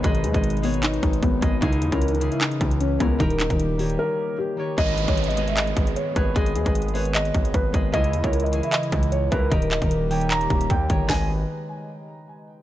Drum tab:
HH |x--x--x--x--x-x-x-o--x--x--x--x--x--x-----x-----|x--x--x--x--x-x-x-x--x--x--x--x--x--x-----x-----|x--x--x--x--x-----o--x--------------------------|x--x--x--x--x-x-x-x--x--x--x--x--x--x-----x-----|
CP |------------------------x-----------------------|------------------------x-----------------------|------x-----------------------------------------|------------------------x-----------------------|
SD |------------------------------------------------|------------------------------------------------|------------------------------------------------|------------------------------------------------|
FT |------------------------------------------------|------------------------------------------------|------------------------------------------------|------------------------------------------------|
BD |o--------o--------------------o-----o-----o-----|o--------o--------------------o-----------o-----|o--------o--------------------------------------|o--------o--------------------o-----------o-----|

HH |x--x--x--x--x-x-x-o--x--x--x--x--x--x-----x-----|x--x--x--x--x-x-x-x--x--x--x--x--x--x-----x-----|x--x--x--x--x-----o--x--x--x--x--x--x-----x-----|o-----------------------------------------------|
CP |------------------------x-----------------------|------------------------x-----------------------|------x-----------------x-----------------------|------------------------------------------------|
SD |------------------------------------------------|------------------------------------------------|------------------------------------------------|o-----------------------------------------------|
FT |------------------------------------------------|------------------------------------------------|------------------------------------------------|o-----------------------------------------------|
BD |o--------o--------------------o-----o-----o-----|o--------o--------------------o-----------o-----|o--------o--------------------o-----o-----o-----|------------------------------------------------|